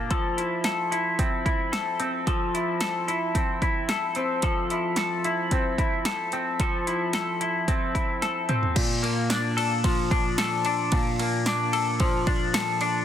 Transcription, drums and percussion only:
0.11 kick, closed hi-hat
0.38 closed hi-hat
0.64 snare, closed hi-hat
0.92 closed hi-hat
1.19 kick, closed hi-hat
1.46 kick, closed hi-hat
1.73 snare, closed hi-hat
2.00 closed hi-hat
2.27 kick, closed hi-hat
2.55 closed hi-hat
2.81 snare, closed hi-hat
3.08 closed hi-hat
3.35 kick, closed hi-hat
3.62 kick, closed hi-hat
3.89 snare, closed hi-hat
4.15 closed hi-hat
4.42 kick, closed hi-hat
4.70 closed hi-hat
4.96 snare, closed hi-hat
5.24 closed hi-hat
5.51 kick, closed hi-hat
5.78 kick, closed hi-hat
6.05 snare, closed hi-hat
6.32 closed hi-hat
6.60 kick, closed hi-hat
6.87 closed hi-hat
7.13 snare, closed hi-hat
7.41 closed hi-hat
7.68 kick, closed hi-hat
7.95 kick, closed hi-hat
8.22 snare, closed hi-hat
8.49 closed hi-hat, mid tom
8.63 floor tom
8.76 kick, crash, ride
9.04 ride
9.30 snare, ride, tambourine
9.58 ride
9.84 kick, ride
10.11 kick, ride
10.38 snare, ride, tambourine
10.65 ride
10.92 kick, ride
11.19 ride
11.46 snare, ride, tambourine
11.73 ride
12.00 kick, ride
12.27 kick, ride
12.54 snare, ride, tambourine
12.81 ride

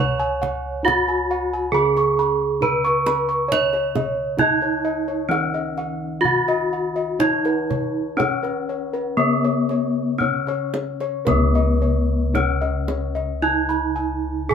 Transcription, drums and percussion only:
0.43 kendang slap, kendang low
0.88 kendang slap, kendang high, kendang low
1.08 kendang slap
1.97 kendang slap
2.19 kendang slap
2.62 kendang low
2.86 kendang slap
3.06 kendang high
3.52 kendang low
3.73 kendang slap
3.95 kendang slap, kendang high, kendang low
4.38 kendang slap, kendang high, kendang low
4.62 kendang slap
5.31 kendang high
5.54 kendang slap
5.77 kendang slap
6.25 kendang low
6.48 kendang slap
7.20 kendang low
7.45 kendang slap
7.71 kendang slap, kendang low
8.20 kendang slap, kendang high, kendang low
8.45 kendang slap
8.95 kendang slap
9.45 kendang slap
9.69 kendang slap
10.20 kendang slap, kendang low
10.47 kendang slap
10.74 kendang high
11.00 kendang slap
11.27 kendang high, kendang low
11.55 kendang slap
12.35 kendang high, kendang low
12.62 kendang slap
12.88 kendang high
13.16 kendang slap
13.70 kendang slap
14.51 kendang low

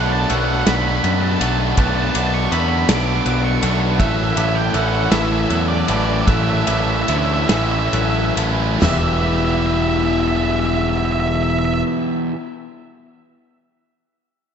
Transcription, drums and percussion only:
0.30 ride
0.67 snare, ride
1.04 ride
1.41 ride
1.77 kick, ride
2.15 ride
2.52 ride
2.89 snare, ride
3.26 ride
3.63 ride
4.00 kick, ride
4.37 ride
4.74 ride
5.12 snare, ride
5.50 ride
5.88 ride
6.27 kick, ride
6.67 ride
7.08 ride
7.49 snare, ride
7.93 ride
8.37 ride
8.82 snare, floor tom, splash

